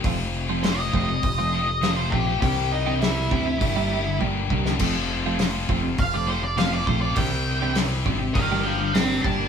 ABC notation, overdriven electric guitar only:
X:1
M:4/4
L:1/16
Q:1/4=101
K:F
V:1 name="Overdriven electric guitar"
[F,,C,F,A,CF]3 [F,A,CF] [F,,C,F,A,CF]2 [F,A,CF]3 z [F,A,CF]2 [F,,C,F,A,CF]2 [F,A,CF] [F,A,CF] | [C,E,G,CE]3 [G,CE] [C,E,G,CE]2 [E,G,CE]2 [G,,D,G,B,DG]2 [G,B,DG]2 [G,,D,G,B,DG]2 [G,B,DG] [G,B,DG] | [F,,C,F,A,CF]3 [F,A,CF] [F,,C,F,A,CF]2 [F,A,CF]3 z [F,A,CF]2 [F,,C,F,A,CF]2 [F,A,CF] [F,A,CF] | [C,E,G,CE]3 [G,CE] [C,E,G,CE]2 [E,G,CE]2 [G,,D,G,B,DG]2 [G,B,DG]2 [G,,D,G,B,DG]2 [G,B,DG] [G,B,DG] |]